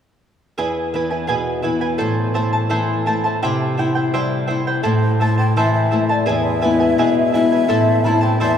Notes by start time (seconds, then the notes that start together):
0.58 E2 E4 G#4 B4 E5 G#5
0.94 E3 E4 B4 E5 G#5
1.11 E4 B4 G#5
1.27 B2 E4 G#4 B4 E5 G#5
1.62 E3 E4 B4 E5 G#5
1.81 E4 B4 G#5
1.98 A2 E4 A4 C5 E5 A5
2.34 A3 E4 C5 E5 A5
2.53 E4 C5 A5
2.69 E3 E4 A4 C5 E5 A5
3.06 A3 E4 C5 E5 A5
3.24 E4 C5 A5
3.43 C3 E4 G4 C5 E5 G5
3.77 E4 C5 E5 G5
3.95 E4 C5 G5
4.14 G3 E4 G4 C5 E5 G5
4.47 E4 C5 E5 G5
4.67 E4 C5 G5
4.83 A2 E4 A4 C5 E5 A5
5.20 A3 E4 C5 E5 A5
5.38 E4 C5 G5 A5
5.56 E3 E4 A4 C5 E5 A5
5.75 E5
5.91 A3 E4 C5 E5 A5
6.09 E4 C5 D5 A5
6.26 E2 E4 G#4 B4 E5 G#5
6.61 G#3 B3 E4 B4 E5 G#5
6.80 E4 B4 G#5
6.98 B2 E4 G#4 B4 E5 G#5
7.32 G#3 B3 E4 B4 E5 G#5
7.52 E4 B4 G#5
7.68 A2 E4 A4 C5 E5 A5
8.04 A3 C4 E4 C5 E5 A5 B5
8.09 A5
8.21 E4 C5 G5 A5
8.40 E2 E4 A4 C5 E5 A5